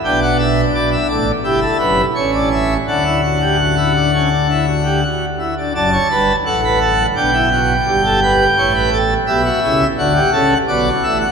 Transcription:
<<
  \new Staff \with { instrumentName = "Pipe organ" } { \time 4/4 \key d \major \tempo 4 = 85 << { g''16 fis''16 e''8 d''16 e''16 d''8 g'16 a'16 b'8 cis''16 d''16 e''8 | fis''2.~ fis''8 r8 | a''4 fis''4 g''2~ | g''4 e''4 fis''4 d''8 e''16 fis''16 | } \\ { d'2 e'4 cis'4 | d'16 e'16 fis'16 g'16 fis'16 e'16 d'16 cis'16 d'16 e'16 fis'16 g'16 fis'8 e'16 d'16 | d''16 cis''16 b'8 a'16 b'16 a'8 d'16 e'16 fis'8 g'16 a'16 b'8 | cis''16 b'16 a'8 g'16 fis'16 e'8 fis'16 g'16 a'8 fis'4 | } >> }
  \new Staff \with { instrumentName = "Pipe organ" } { \clef bass \time 4/4 \key d \major <b,, b,>4 <b,, b,>8 <a,, a,>8 <g,, g,>8 <fis,, fis,>8 <a,, a,>4 | <d, d>2.~ <d, d>8 r8 | <fis,, fis,>8 <g,, g,>8 <a,, a,>4 <b,, b,>4 <g,, g,>4 | <a,, a,>4 <b,, b,>8 <cis, cis>8 <d, d>8 <cis, cis>8 <b,, b,>8 <a,, a,>8 | }
>>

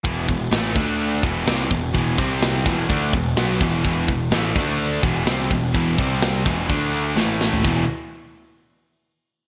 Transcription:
<<
  \new Staff \with { instrumentName = "Distorted electric guitar" } { \clef bass \time 4/4 \key e \minor \tempo 4 = 126 <e, b, e>8 <e, b,>8 <a, e a>8 <d a d'>4 <e, b, e>8 <c g c'>8 <e, b,>8 | <e, b, e>8 <c g c'>4 <e, b, e>8 <d a d'>8 <e, b,>8 <b, fis b>8 <e, b, e>8 | <e, b, e>8 <e, b,>8 <a, e a>8 <d a d'>4 <e, b, e>8 <c g c'>8 <e, b,>8 | <e, b, e>8 <c g c'>4 <e, b, e>8 <d a d'>4 <a, e a>4 |
<e, b, e>8 r2. r8 | }
  \new Staff \with { instrumentName = "Distorted electric guitar" } { \clef bass \time 4/4 \key e \minor <e, b, e>8 <e, b,>8 <a, e a>8 <d a d'>4 <e, b, e>8 <c g c'>8 <e, b,>8 | <e, b, e>8 <c g c'>4 <e, b, e>8 <d a d'>8 <e, b,>8 <b, fis b>8 <e, b, e>8 | <e, b, e>8 <e, b,>8 <a, e a>8 <d a d'>4 <e, b, e>8 <c g c'>8 <e, b,>8 | <e, b, e>8 <c g c'>4 <e, b, e>8 <d a d'>4 <a, e a>4 |
<e, b, e>8 r2. r8 | }
  \new Staff \with { instrumentName = "Overdriven electric guitar" } { \clef bass \time 4/4 \key e \minor <e, b, e>8 <e, b,>8 <a, e a>8 <d a d'>4 <e, b, e>8 <c g c'>8 <e, b,>8 | <e, b, e>8 <c g c'>4 <e, b, e>8 <d a d'>8 <e, b,>8 <b, fis b>8 <e, b, e>8 | <e, b, e>8 <e, b,>8 <a, e a>8 <d a d'>4 <e, b, e>8 <c g c'>8 <e, b,>8 | <e, b, e>8 <c g c'>4 <e, b, e>8 <d a d'>4 <a, e a>4 |
<e, b, e>8 r2. r8 | }
  \new Staff \with { instrumentName = "Picked electric bass" } { \clef bass \time 4/4 \key e \minor e,,8 e,,8 a,,8 d,4 e,,8 c,8 e,,8 | e,,8 c,4 e,,8 d,8 e,,8 b,,8 e,,8 | e,,8 e,,8 a,,8 d,4 e,,8 c,8 e,,8 | e,,8 c,4 e,,8 d,4 a,,4 |
e,,8 r2. r8 | }
  \new DrumStaff \with { instrumentName = "Drums" } \drummode { \time 4/4 <hho bd>8 <hho bd>8 <hho sn>8 <hho bd>8 hho8 <hho bd>8 <hho sn>8 <hho bd>8 | <hho bd>8 <hho bd>8 <hho sn>8 <hho bd sn>8 <hho bd>8 <hho bd>8 <hho sn>8 <hho bd>8 | <hho bd>8 <hho bd>8 <hho sn>8 <hho bd>8 hho8 <hho bd>8 <hho sn>8 <hho bd>8 | <hho bd>8 <hho bd>8 <hho sn>8 <hho bd sn>8 <hho bd>8 hho8 sn8 sn16 tomfh16 |
<cymc bd>4 r4 r4 r4 | }
>>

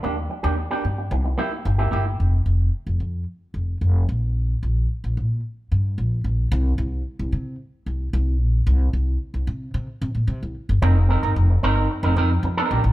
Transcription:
<<
  \new Staff \with { instrumentName = "Clean electric guitar" } { \time 4/4 \key c \dorian \tempo 4 = 111 <bes d' g'>16 r8 <bes d' g'>16 r16 <bes d' g'>16 r4 <bes e' g'>16 r8 <bes e' g'>16 <bes e' g'>16 r16 | \key f \major r1 | r1 | r1 |
r1 | <c' ees' bes'>16 r16 <c' ees' bes'>16 <c' ees' bes'>16 r8 <c' ees' bes'>16 <c' ees' bes'>16 r16 <c' ees' bes'>16 <c' ees' bes'>16 r8 <c' ees' bes'>16 <d' g' bes'>16 r16 | }
  \new Staff \with { instrumentName = "Upright bass" } { \clef bass \time 4/4 \key c \dorian ees,8 r16 ees,8 r16 g,8 c,8 r8 g,,8 g,,8 | \key f \major f,,8 f,,8 r16 f,,16 f,8 r8 f,,8 f,,8 bes,,8~ | bes,,8 bes,,8 r16 bes,,16 bes,8 r8 g,8 bes,,8 bes,,8 | c,8 c,8 r16 c,16 c8 r8 c,8 c,8 bes,,8 |
c,8 c,8 r16 c,16 c8 c16 r16 c16 bes,16 c16 c,16 r16 g,,16 | f,,8. g,,16 f,,8 g,,8 r16 f,,16 f,8 f,16 r16 bes,,16 a,,16 | }
>>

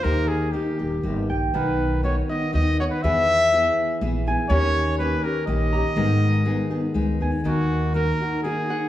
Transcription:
<<
  \new Staff \with { instrumentName = "Trumpet" } { \time 3/4 \key gis \minor \tempo 4 = 122 ais'8 gis'8 g'4. r8 | b'4 cis''8 dis''8 dis''8 cis''16 b'16 | e''2 r4 | cis''4 b'8 ais'8 dis''4~ |
dis''2~ dis''8 r8 | \key ees \minor ges'4 bes'4 aes'4 | }
  \new Staff \with { instrumentName = "Harp" } { \time 3/4 \key gis \minor dis8 r2 g''8 | dis8 r2 fis''8 | e8 r2 gis''8 | dis8 r2 ais''8 |
dis8 r2 gis''8 | \key ees \minor ees8 r2 ges''8 | }
  \new Staff \with { instrumentName = "Nylon-string guitar" } { \time 3/4 \key gis \minor <dis ais dis' g'>4 <dis ais dis' g'>8 <ais dis' g'>8 <dis ais dis' g'>4 | <b, dis b dis' fis'>4 <dis b dis' fis'>8 <b dis' fis'>8 <dis b dis' fis'>8 <b dis' fis'>8 | <e b e' gis'>4 <e b e' gis'>4 <e b e' gis'>8 <b e' gis'>8 | <dis ais cis' g'>4 <dis ais cis' g'>8 <ais cis' g'>8 <dis ais cis' g'>8 <ais cis' g'>8 |
<gis, dis gis b dis' gis'>4 <gis b dis' gis'>8 <gis b dis' gis'>8 <gis b dis' gis'>8 <gis b dis' gis'>8 | \key ees \minor <ees bes ees' ges'>4 <ees bes ees' ges'>8 <bes ees' ges'>8 <ees bes ees' ges'>8 <bes ees' ges'>8 | }
  \new Staff \with { instrumentName = "Upright bass" } { \clef bass \time 3/4 \key gis \minor dis,4. dis,,8 g,,8 ais,,8 | b,,2 dis,4 | e,2 ais,,4 | dis,2 ais,,4 |
gis,,2 cis,8 dis,8 | \key ees \minor ees,2 r4 | }
>>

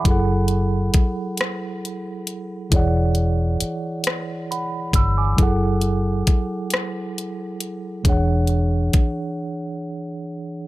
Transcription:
<<
  \new Staff \with { instrumentName = "Tine electric piano" } { \time 6/8 \key fis \minor \tempo 4. = 45 << { b''16 r2 r8. | r2 <fis'' b''>8 <b'' e'''>16 <gis'' d'''>16~ | <gis'' d'''>16 r2 r8. | r2. | } \\ { <fis e' gis' a' fis''>2. | <e e' gis' cis'' d'' fis''>2. | <fis e' gis' a' fis''>2. | <e d' gis' cis'' fis''>2. | } >> }
  \new Staff \with { instrumentName = "Fingered electric bass" } { \clef bass \time 6/8 \key fis \minor fis,,4 r2 | e,,4 r4. g,,8 | fis,,4 r2 | e,,4 r2 | }
  \new DrumStaff \with { instrumentName = "Drums" } \drummode { \time 6/8 <hh bd>8 hh8 <hh bd>8 <hh ss>8 hh8 hh8 | <hh bd>8 hh8 hh8 <hh ss>8 hh8 <hh bd>8 | <hh bd>8 hh8 <hh bd>8 <hh ss>8 hh8 hh8 | <hh bd>8 hh8 <hh bd>8 r4. | }
>>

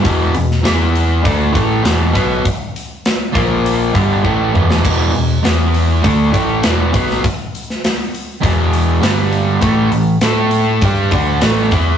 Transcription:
<<
  \new Staff \with { instrumentName = "Overdriven electric guitar" } { \clef bass \time 4/4 \key e \minor \tempo 4 = 100 <e, b, e>8 <e, b,>8 <e b e'>4 <d a d'>8 <a, e a>8 <e, b, e>8 <b, fis b>8 | r4. <ais, eis ais>4 <g, d g>8 <a, e a>8 <e, b, e>8 | <e, b, e>8 <e, b,>8 <e b e'>4 <d a d'>8 <a, e a>8 <e, b, e>8 <b, fis b>8 | r2 <e, b, e>4 <g, d g>4 |
<a, e a>8 <a, e>8 <a e' a'>4 <g d' g'>8 <d a d'>8 <a, e a>8 <e b e'>8 | }
  \new Staff \with { instrumentName = "Picked electric bass" } { \clef bass \time 4/4 \key e \minor e,,8 e,,8 e,4 d,8 a,,8 e,,8 b,,8 | r4. ais,,4 g,,8 a,,8 e,,8 | e,,8 e,,8 e,4 d,8 a,,8 e,,8 b,,8 | r2 e,,4 g,,4 |
a,,8 a,,8 a,4 g,8 d,8 a,,8 e,8 | }
  \new DrumStaff \with { instrumentName = "Drums" } \drummode { \time 4/4 <hho bd>8 hho16 sn16 <hho sn>8 hho8 <hho bd>8 <hho bd>8 <hho sn>8 <hho bd>8 | <hho bd>8 hho8 <hho sn>8 <hho bd>8 hho8 <hho bd>8 bd8 toml16 sn16 | <cymc bd>8 hho8 <hho sn>8 hho8 <hho bd>8 <hho bd>8 <hho sn>8 <hho bd>16 sn16 | <hho bd>8 hho16 sn16 <hho sn>8 hho8 <hho bd>8 hho8 <hho sn>8 hho8 |
<hho bd>8 hho8 <hho sn>8 hho8 <hho bd>8 <hho bd>8 <hho sn>8 <hho bd>8 | }
>>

